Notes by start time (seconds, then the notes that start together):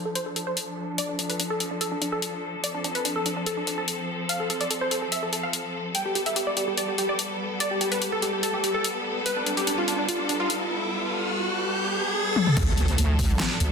Already playing: F3 D4 A4
0.05 A4
0.15 C5, closed hi-hat
0.26 A4
0.36 A4, closed hi-hat
0.47 C5
0.57 closed hi-hat
0.98 D5, closed hi-hat
1.09 D4
1.19 D4, closed hi-hat
1.30 B4, closed hi-hat
1.40 D4, closed hi-hat
1.50 A4
1.60 D4, closed hi-hat
1.71 D4
1.81 A4, closed hi-hat
1.92 D4
2.02 D4, closed hi-hat
2.12 A4
2.22 closed hi-hat
2.64 C4 D5, closed hi-hat
2.74 D4
2.84 D4, closed hi-hat
2.95 B4, closed hi-hat
3.05 D4, closed hi-hat
3.16 A4
3.26 D4, closed hi-hat
3.37 D4
3.46 A4, closed hi-hat
3.57 D4
3.67 D4, closed hi-hat
3.78 A4
3.88 closed hi-hat
4.29 F5, closed hi-hat
4.40 A4
4.50 A4, closed hi-hat
4.61 D5, closed hi-hat
4.71 A4, closed hi-hat
4.81 C5
4.91 A4, closed hi-hat
5.02 A4
5.12 E5, closed hi-hat
5.23 A4
5.33 A4, closed hi-hat
5.43 F5
5.53 closed hi-hat
5.95 G3 B3 A4 G5, closed hi-hat, riser
6.05 G4
6.15 G4, closed hi-hat
6.26 E5, closed hi-hat
6.36 G4, closed hi-hat
6.47 D5
6.57 G4, closed hi-hat
6.68 G4
6.77 D5, closed hi-hat
6.88 G4
6.98 G4, closed hi-hat
7.09 D5
7.19 closed hi-hat
7.60 D5, closed hi-hat
7.71 G4
7.81 G4, closed hi-hat
7.92 B4, closed hi-hat
8.02 G4, closed hi-hat
8.12 A4
8.22 G4, closed hi-hat
8.33 G4
8.43 A4, closed hi-hat
8.54 G4
8.64 G4, closed hi-hat
8.74 A4
8.84 closed hi-hat
9.26 B4, closed hi-hat
9.37 D4
9.46 D4, closed hi-hat
9.57 G4, closed hi-hat
9.67 D4, closed hi-hat
9.78 F4
9.88 D4, closed hi-hat
9.99 D4
10.09 F4, closed hi-hat
10.19 D4
10.29 D4, closed hi-hat
10.40 F4
10.50 closed hi-hat
12.36 high tom
12.47 mid tom
12.57 D2 F3 D4 A4, kick, closed hi-hat, crash, impact
12.78 closed hi-hat
12.88 closed hi-hat
12.98 D2, closed hi-hat
13.19 kick, open hi-hat
13.40 snare, clap, closed hi-hat
13.60 D2, closed hi-hat